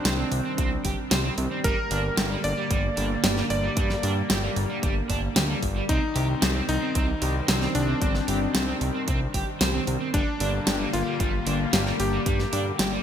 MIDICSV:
0, 0, Header, 1, 6, 480
1, 0, Start_track
1, 0, Key_signature, -3, "minor"
1, 0, Tempo, 530973
1, 1486, Time_signature, 4, 2, 24, 8
1, 11778, End_track
2, 0, Start_track
2, 0, Title_t, "Electric grand piano"
2, 0, Program_c, 0, 2
2, 0, Note_on_c, 0, 62, 93
2, 1390, Note_off_c, 0, 62, 0
2, 1486, Note_on_c, 0, 70, 101
2, 2110, Note_off_c, 0, 70, 0
2, 2206, Note_on_c, 0, 74, 98
2, 3070, Note_off_c, 0, 74, 0
2, 3167, Note_on_c, 0, 74, 93
2, 5230, Note_off_c, 0, 74, 0
2, 5326, Note_on_c, 0, 63, 98
2, 5950, Note_off_c, 0, 63, 0
2, 6046, Note_on_c, 0, 63, 98
2, 6910, Note_off_c, 0, 63, 0
2, 7005, Note_on_c, 0, 62, 94
2, 9070, Note_off_c, 0, 62, 0
2, 9166, Note_on_c, 0, 62, 98
2, 9790, Note_off_c, 0, 62, 0
2, 9885, Note_on_c, 0, 65, 101
2, 10749, Note_off_c, 0, 65, 0
2, 10847, Note_on_c, 0, 67, 95
2, 11778, Note_off_c, 0, 67, 0
2, 11778, End_track
3, 0, Start_track
3, 0, Title_t, "Overdriven electric guitar"
3, 0, Program_c, 1, 29
3, 47, Note_on_c, 1, 72, 86
3, 107, Note_off_c, 1, 72, 0
3, 167, Note_on_c, 1, 60, 107
3, 227, Note_off_c, 1, 60, 0
3, 408, Note_on_c, 1, 60, 77
3, 467, Note_off_c, 1, 60, 0
3, 527, Note_on_c, 1, 60, 104
3, 616, Note_off_c, 1, 60, 0
3, 767, Note_on_c, 1, 67, 77
3, 857, Note_off_c, 1, 67, 0
3, 1008, Note_on_c, 1, 72, 82
3, 1067, Note_off_c, 1, 72, 0
3, 1127, Note_on_c, 1, 60, 101
3, 1186, Note_off_c, 1, 60, 0
3, 1367, Note_on_c, 1, 60, 78
3, 1426, Note_off_c, 1, 60, 0
3, 1487, Note_on_c, 1, 55, 103
3, 1577, Note_off_c, 1, 55, 0
3, 1727, Note_on_c, 1, 62, 77
3, 1816, Note_off_c, 1, 62, 0
3, 1966, Note_on_c, 1, 67, 84
3, 2026, Note_off_c, 1, 67, 0
3, 2087, Note_on_c, 1, 55, 104
3, 2146, Note_off_c, 1, 55, 0
3, 2327, Note_on_c, 1, 55, 80
3, 2386, Note_off_c, 1, 55, 0
3, 2447, Note_on_c, 1, 55, 103
3, 2536, Note_off_c, 1, 55, 0
3, 2687, Note_on_c, 1, 62, 76
3, 2776, Note_off_c, 1, 62, 0
3, 2926, Note_on_c, 1, 67, 81
3, 2986, Note_off_c, 1, 67, 0
3, 3047, Note_on_c, 1, 55, 100
3, 3107, Note_off_c, 1, 55, 0
3, 3288, Note_on_c, 1, 55, 79
3, 3347, Note_off_c, 1, 55, 0
3, 3408, Note_on_c, 1, 55, 100
3, 3497, Note_off_c, 1, 55, 0
3, 3646, Note_on_c, 1, 62, 78
3, 3736, Note_off_c, 1, 62, 0
3, 3887, Note_on_c, 1, 67, 84
3, 3946, Note_off_c, 1, 67, 0
3, 4007, Note_on_c, 1, 55, 101
3, 4066, Note_off_c, 1, 55, 0
3, 4246, Note_on_c, 1, 55, 78
3, 4306, Note_off_c, 1, 55, 0
3, 4366, Note_on_c, 1, 55, 104
3, 4456, Note_off_c, 1, 55, 0
3, 4606, Note_on_c, 1, 62, 73
3, 4696, Note_off_c, 1, 62, 0
3, 4846, Note_on_c, 1, 67, 85
3, 4906, Note_off_c, 1, 67, 0
3, 4966, Note_on_c, 1, 55, 101
3, 5026, Note_off_c, 1, 55, 0
3, 5207, Note_on_c, 1, 55, 78
3, 5267, Note_off_c, 1, 55, 0
3, 5327, Note_on_c, 1, 60, 98
3, 5416, Note_off_c, 1, 60, 0
3, 5567, Note_on_c, 1, 67, 76
3, 5656, Note_off_c, 1, 67, 0
3, 5806, Note_on_c, 1, 72, 85
3, 5866, Note_off_c, 1, 72, 0
3, 5925, Note_on_c, 1, 60, 103
3, 5985, Note_off_c, 1, 60, 0
3, 6166, Note_on_c, 1, 60, 77
3, 6226, Note_off_c, 1, 60, 0
3, 6286, Note_on_c, 1, 60, 104
3, 6376, Note_off_c, 1, 60, 0
3, 6526, Note_on_c, 1, 67, 74
3, 6616, Note_off_c, 1, 67, 0
3, 6765, Note_on_c, 1, 72, 83
3, 6825, Note_off_c, 1, 72, 0
3, 6886, Note_on_c, 1, 60, 106
3, 6946, Note_off_c, 1, 60, 0
3, 7126, Note_on_c, 1, 60, 78
3, 7186, Note_off_c, 1, 60, 0
3, 7246, Note_on_c, 1, 60, 97
3, 7336, Note_off_c, 1, 60, 0
3, 7486, Note_on_c, 1, 67, 79
3, 7576, Note_off_c, 1, 67, 0
3, 7727, Note_on_c, 1, 72, 84
3, 7786, Note_off_c, 1, 72, 0
3, 7846, Note_on_c, 1, 60, 105
3, 7906, Note_off_c, 1, 60, 0
3, 8086, Note_on_c, 1, 60, 79
3, 8146, Note_off_c, 1, 60, 0
3, 8206, Note_on_c, 1, 60, 105
3, 8296, Note_off_c, 1, 60, 0
3, 8445, Note_on_c, 1, 67, 76
3, 8535, Note_off_c, 1, 67, 0
3, 8685, Note_on_c, 1, 72, 86
3, 8745, Note_off_c, 1, 72, 0
3, 8805, Note_on_c, 1, 60, 100
3, 8865, Note_off_c, 1, 60, 0
3, 9046, Note_on_c, 1, 60, 80
3, 9106, Note_off_c, 1, 60, 0
3, 9165, Note_on_c, 1, 55, 100
3, 9255, Note_off_c, 1, 55, 0
3, 9404, Note_on_c, 1, 62, 80
3, 9495, Note_off_c, 1, 62, 0
3, 9645, Note_on_c, 1, 67, 86
3, 9706, Note_off_c, 1, 67, 0
3, 9765, Note_on_c, 1, 55, 107
3, 9825, Note_off_c, 1, 55, 0
3, 10006, Note_on_c, 1, 55, 81
3, 10066, Note_off_c, 1, 55, 0
3, 10124, Note_on_c, 1, 55, 105
3, 10215, Note_off_c, 1, 55, 0
3, 10365, Note_on_c, 1, 62, 80
3, 10455, Note_off_c, 1, 62, 0
3, 10604, Note_on_c, 1, 67, 86
3, 10665, Note_off_c, 1, 67, 0
3, 10723, Note_on_c, 1, 55, 106
3, 10785, Note_off_c, 1, 55, 0
3, 10963, Note_on_c, 1, 55, 79
3, 11025, Note_off_c, 1, 55, 0
3, 11084, Note_on_c, 1, 55, 101
3, 11175, Note_off_c, 1, 55, 0
3, 11326, Note_on_c, 1, 62, 80
3, 11416, Note_off_c, 1, 62, 0
3, 11566, Note_on_c, 1, 67, 87
3, 11626, Note_off_c, 1, 67, 0
3, 11685, Note_on_c, 1, 55, 104
3, 11746, Note_off_c, 1, 55, 0
3, 11778, End_track
4, 0, Start_track
4, 0, Title_t, "Analog synth pad"
4, 0, Program_c, 2, 89
4, 0, Note_on_c, 2, 51, 82
4, 0, Note_on_c, 2, 55, 75
4, 0, Note_on_c, 2, 60, 91
4, 1449, Note_off_c, 2, 51, 0
4, 1449, Note_off_c, 2, 60, 0
4, 1485, Note_on_c, 2, 50, 81
4, 1485, Note_on_c, 2, 58, 91
4, 5289, Note_off_c, 2, 50, 0
4, 5289, Note_off_c, 2, 58, 0
4, 5326, Note_on_c, 2, 51, 83
4, 5326, Note_on_c, 2, 60, 92
4, 9129, Note_off_c, 2, 55, 0
4, 9130, Note_off_c, 2, 51, 0
4, 9130, Note_off_c, 2, 60, 0
4, 9163, Note_on_c, 2, 55, 75
4, 9163, Note_on_c, 2, 58, 93
4, 9164, Note_on_c, 2, 50, 82
4, 11778, Note_off_c, 2, 50, 0
4, 11778, Note_off_c, 2, 55, 0
4, 11778, Note_off_c, 2, 58, 0
4, 11778, End_track
5, 0, Start_track
5, 0, Title_t, "Analog synth bass"
5, 0, Program_c, 3, 38
5, 45, Note_on_c, 3, 36, 91
5, 219, Note_off_c, 3, 36, 0
5, 286, Note_on_c, 3, 36, 88
5, 372, Note_off_c, 3, 36, 0
5, 527, Note_on_c, 3, 36, 87
5, 699, Note_off_c, 3, 36, 0
5, 767, Note_on_c, 3, 31, 92
5, 853, Note_off_c, 3, 31, 0
5, 1005, Note_on_c, 3, 36, 81
5, 1179, Note_off_c, 3, 36, 0
5, 1246, Note_on_c, 3, 36, 93
5, 1333, Note_off_c, 3, 36, 0
5, 1487, Note_on_c, 3, 31, 101
5, 1573, Note_off_c, 3, 31, 0
5, 1726, Note_on_c, 3, 31, 104
5, 1899, Note_off_c, 3, 31, 0
5, 1965, Note_on_c, 3, 31, 106
5, 2139, Note_off_c, 3, 31, 0
5, 2206, Note_on_c, 3, 31, 90
5, 2292, Note_off_c, 3, 31, 0
5, 2447, Note_on_c, 3, 31, 99
5, 2619, Note_off_c, 3, 31, 0
5, 2686, Note_on_c, 3, 31, 103
5, 2859, Note_off_c, 3, 31, 0
5, 2927, Note_on_c, 3, 31, 91
5, 3099, Note_off_c, 3, 31, 0
5, 3166, Note_on_c, 3, 31, 81
5, 3339, Note_off_c, 3, 31, 0
5, 3407, Note_on_c, 3, 43, 98
5, 3579, Note_off_c, 3, 43, 0
5, 3647, Note_on_c, 3, 43, 81
5, 3820, Note_off_c, 3, 43, 0
5, 3887, Note_on_c, 3, 31, 89
5, 4060, Note_off_c, 3, 31, 0
5, 4126, Note_on_c, 3, 31, 88
5, 4213, Note_off_c, 3, 31, 0
5, 4367, Note_on_c, 3, 31, 85
5, 4539, Note_off_c, 3, 31, 0
5, 4607, Note_on_c, 3, 31, 94
5, 4779, Note_off_c, 3, 31, 0
5, 4847, Note_on_c, 3, 38, 82
5, 5020, Note_off_c, 3, 38, 0
5, 5087, Note_on_c, 3, 31, 99
5, 5259, Note_off_c, 3, 31, 0
5, 5327, Note_on_c, 3, 36, 100
5, 5413, Note_off_c, 3, 36, 0
5, 5565, Note_on_c, 3, 36, 107
5, 5738, Note_off_c, 3, 36, 0
5, 5806, Note_on_c, 3, 36, 102
5, 5979, Note_off_c, 3, 36, 0
5, 6046, Note_on_c, 3, 36, 91
5, 6133, Note_off_c, 3, 36, 0
5, 6286, Note_on_c, 3, 36, 101
5, 6459, Note_off_c, 3, 36, 0
5, 6525, Note_on_c, 3, 36, 104
5, 6698, Note_off_c, 3, 36, 0
5, 6766, Note_on_c, 3, 36, 88
5, 6939, Note_off_c, 3, 36, 0
5, 7005, Note_on_c, 3, 36, 83
5, 7179, Note_off_c, 3, 36, 0
5, 7246, Note_on_c, 3, 31, 100
5, 7419, Note_off_c, 3, 31, 0
5, 7486, Note_on_c, 3, 31, 83
5, 7659, Note_off_c, 3, 31, 0
5, 7726, Note_on_c, 3, 36, 89
5, 7899, Note_off_c, 3, 36, 0
5, 7966, Note_on_c, 3, 36, 89
5, 8053, Note_off_c, 3, 36, 0
5, 8207, Note_on_c, 3, 36, 87
5, 8379, Note_off_c, 3, 36, 0
5, 8446, Note_on_c, 3, 31, 94
5, 8533, Note_off_c, 3, 31, 0
5, 8686, Note_on_c, 3, 36, 78
5, 8859, Note_off_c, 3, 36, 0
5, 8926, Note_on_c, 3, 36, 94
5, 9013, Note_off_c, 3, 36, 0
5, 9166, Note_on_c, 3, 31, 100
5, 9252, Note_off_c, 3, 31, 0
5, 9405, Note_on_c, 3, 31, 103
5, 9579, Note_off_c, 3, 31, 0
5, 9645, Note_on_c, 3, 31, 106
5, 9818, Note_off_c, 3, 31, 0
5, 9885, Note_on_c, 3, 31, 93
5, 9972, Note_off_c, 3, 31, 0
5, 10126, Note_on_c, 3, 31, 101
5, 10299, Note_off_c, 3, 31, 0
5, 10365, Note_on_c, 3, 31, 105
5, 10538, Note_off_c, 3, 31, 0
5, 10606, Note_on_c, 3, 31, 89
5, 10779, Note_off_c, 3, 31, 0
5, 10846, Note_on_c, 3, 31, 83
5, 11019, Note_off_c, 3, 31, 0
5, 11086, Note_on_c, 3, 43, 100
5, 11259, Note_off_c, 3, 43, 0
5, 11327, Note_on_c, 3, 43, 80
5, 11500, Note_off_c, 3, 43, 0
5, 11566, Note_on_c, 3, 31, 88
5, 11739, Note_off_c, 3, 31, 0
5, 11778, End_track
6, 0, Start_track
6, 0, Title_t, "Drums"
6, 46, Note_on_c, 9, 38, 127
6, 46, Note_on_c, 9, 42, 99
6, 136, Note_off_c, 9, 38, 0
6, 136, Note_off_c, 9, 42, 0
6, 286, Note_on_c, 9, 46, 77
6, 376, Note_off_c, 9, 46, 0
6, 525, Note_on_c, 9, 42, 99
6, 527, Note_on_c, 9, 36, 127
6, 616, Note_off_c, 9, 42, 0
6, 617, Note_off_c, 9, 36, 0
6, 765, Note_on_c, 9, 46, 83
6, 767, Note_on_c, 9, 36, 65
6, 855, Note_off_c, 9, 46, 0
6, 857, Note_off_c, 9, 36, 0
6, 1005, Note_on_c, 9, 38, 124
6, 1005, Note_on_c, 9, 42, 97
6, 1095, Note_off_c, 9, 38, 0
6, 1095, Note_off_c, 9, 42, 0
6, 1245, Note_on_c, 9, 46, 80
6, 1336, Note_off_c, 9, 46, 0
6, 1486, Note_on_c, 9, 42, 98
6, 1487, Note_on_c, 9, 36, 127
6, 1576, Note_off_c, 9, 42, 0
6, 1577, Note_off_c, 9, 36, 0
6, 1725, Note_on_c, 9, 46, 77
6, 1816, Note_off_c, 9, 46, 0
6, 1966, Note_on_c, 9, 38, 126
6, 1966, Note_on_c, 9, 42, 96
6, 2056, Note_off_c, 9, 38, 0
6, 2056, Note_off_c, 9, 42, 0
6, 2206, Note_on_c, 9, 46, 76
6, 2296, Note_off_c, 9, 46, 0
6, 2446, Note_on_c, 9, 42, 96
6, 2447, Note_on_c, 9, 36, 127
6, 2536, Note_off_c, 9, 42, 0
6, 2537, Note_off_c, 9, 36, 0
6, 2686, Note_on_c, 9, 46, 80
6, 2777, Note_off_c, 9, 46, 0
6, 2926, Note_on_c, 9, 38, 126
6, 2926, Note_on_c, 9, 42, 96
6, 3016, Note_off_c, 9, 38, 0
6, 3016, Note_off_c, 9, 42, 0
6, 3046, Note_on_c, 9, 38, 41
6, 3136, Note_off_c, 9, 38, 0
6, 3166, Note_on_c, 9, 46, 76
6, 3256, Note_off_c, 9, 46, 0
6, 3406, Note_on_c, 9, 42, 91
6, 3407, Note_on_c, 9, 36, 127
6, 3496, Note_off_c, 9, 42, 0
6, 3497, Note_off_c, 9, 36, 0
6, 3526, Note_on_c, 9, 38, 40
6, 3616, Note_off_c, 9, 38, 0
6, 3646, Note_on_c, 9, 46, 78
6, 3736, Note_off_c, 9, 46, 0
6, 3886, Note_on_c, 9, 38, 127
6, 3886, Note_on_c, 9, 42, 92
6, 3976, Note_off_c, 9, 38, 0
6, 3976, Note_off_c, 9, 42, 0
6, 4126, Note_on_c, 9, 46, 75
6, 4216, Note_off_c, 9, 46, 0
6, 4366, Note_on_c, 9, 42, 92
6, 4367, Note_on_c, 9, 36, 127
6, 4457, Note_off_c, 9, 36, 0
6, 4457, Note_off_c, 9, 42, 0
6, 4607, Note_on_c, 9, 36, 68
6, 4607, Note_on_c, 9, 46, 76
6, 4697, Note_off_c, 9, 36, 0
6, 4697, Note_off_c, 9, 46, 0
6, 4846, Note_on_c, 9, 38, 125
6, 4846, Note_on_c, 9, 42, 91
6, 4936, Note_off_c, 9, 38, 0
6, 4936, Note_off_c, 9, 42, 0
6, 5085, Note_on_c, 9, 46, 75
6, 5086, Note_on_c, 9, 36, 62
6, 5176, Note_off_c, 9, 46, 0
6, 5177, Note_off_c, 9, 36, 0
6, 5325, Note_on_c, 9, 42, 88
6, 5326, Note_on_c, 9, 36, 121
6, 5416, Note_off_c, 9, 42, 0
6, 5417, Note_off_c, 9, 36, 0
6, 5565, Note_on_c, 9, 46, 77
6, 5656, Note_off_c, 9, 46, 0
6, 5805, Note_on_c, 9, 38, 123
6, 5805, Note_on_c, 9, 42, 91
6, 5896, Note_off_c, 9, 38, 0
6, 5896, Note_off_c, 9, 42, 0
6, 6045, Note_on_c, 9, 46, 75
6, 6136, Note_off_c, 9, 46, 0
6, 6285, Note_on_c, 9, 42, 89
6, 6286, Note_on_c, 9, 36, 122
6, 6375, Note_off_c, 9, 42, 0
6, 6377, Note_off_c, 9, 36, 0
6, 6525, Note_on_c, 9, 46, 80
6, 6615, Note_off_c, 9, 46, 0
6, 6765, Note_on_c, 9, 38, 117
6, 6765, Note_on_c, 9, 42, 89
6, 6855, Note_off_c, 9, 38, 0
6, 6855, Note_off_c, 9, 42, 0
6, 6885, Note_on_c, 9, 38, 38
6, 6976, Note_off_c, 9, 38, 0
6, 7005, Note_on_c, 9, 46, 78
6, 7096, Note_off_c, 9, 46, 0
6, 7246, Note_on_c, 9, 36, 119
6, 7246, Note_on_c, 9, 42, 89
6, 7336, Note_off_c, 9, 42, 0
6, 7337, Note_off_c, 9, 36, 0
6, 7366, Note_on_c, 9, 38, 36
6, 7456, Note_off_c, 9, 38, 0
6, 7486, Note_on_c, 9, 46, 81
6, 7576, Note_off_c, 9, 46, 0
6, 7726, Note_on_c, 9, 38, 118
6, 7726, Note_on_c, 9, 42, 93
6, 7816, Note_off_c, 9, 38, 0
6, 7816, Note_off_c, 9, 42, 0
6, 7966, Note_on_c, 9, 46, 79
6, 8056, Note_off_c, 9, 46, 0
6, 8205, Note_on_c, 9, 42, 91
6, 8206, Note_on_c, 9, 36, 118
6, 8296, Note_off_c, 9, 42, 0
6, 8297, Note_off_c, 9, 36, 0
6, 8446, Note_on_c, 9, 36, 62
6, 8446, Note_on_c, 9, 46, 78
6, 8536, Note_off_c, 9, 46, 0
6, 8537, Note_off_c, 9, 36, 0
6, 8686, Note_on_c, 9, 38, 115
6, 8686, Note_on_c, 9, 42, 91
6, 8776, Note_off_c, 9, 38, 0
6, 8776, Note_off_c, 9, 42, 0
6, 8926, Note_on_c, 9, 46, 77
6, 9016, Note_off_c, 9, 46, 0
6, 9166, Note_on_c, 9, 36, 118
6, 9166, Note_on_c, 9, 42, 93
6, 9256, Note_off_c, 9, 36, 0
6, 9256, Note_off_c, 9, 42, 0
6, 9405, Note_on_c, 9, 46, 83
6, 9495, Note_off_c, 9, 46, 0
6, 9644, Note_on_c, 9, 38, 116
6, 9644, Note_on_c, 9, 42, 93
6, 9735, Note_off_c, 9, 38, 0
6, 9735, Note_off_c, 9, 42, 0
6, 9885, Note_on_c, 9, 46, 79
6, 9975, Note_off_c, 9, 46, 0
6, 10125, Note_on_c, 9, 42, 92
6, 10126, Note_on_c, 9, 36, 119
6, 10216, Note_off_c, 9, 36, 0
6, 10216, Note_off_c, 9, 42, 0
6, 10365, Note_on_c, 9, 46, 86
6, 10455, Note_off_c, 9, 46, 0
6, 10605, Note_on_c, 9, 38, 115
6, 10605, Note_on_c, 9, 42, 90
6, 10695, Note_off_c, 9, 38, 0
6, 10695, Note_off_c, 9, 42, 0
6, 10725, Note_on_c, 9, 38, 36
6, 10816, Note_off_c, 9, 38, 0
6, 10845, Note_on_c, 9, 46, 84
6, 10935, Note_off_c, 9, 46, 0
6, 11085, Note_on_c, 9, 42, 96
6, 11086, Note_on_c, 9, 36, 116
6, 11175, Note_off_c, 9, 42, 0
6, 11176, Note_off_c, 9, 36, 0
6, 11205, Note_on_c, 9, 38, 37
6, 11296, Note_off_c, 9, 38, 0
6, 11325, Note_on_c, 9, 46, 85
6, 11415, Note_off_c, 9, 46, 0
6, 11564, Note_on_c, 9, 38, 115
6, 11564, Note_on_c, 9, 42, 95
6, 11655, Note_off_c, 9, 38, 0
6, 11655, Note_off_c, 9, 42, 0
6, 11778, End_track
0, 0, End_of_file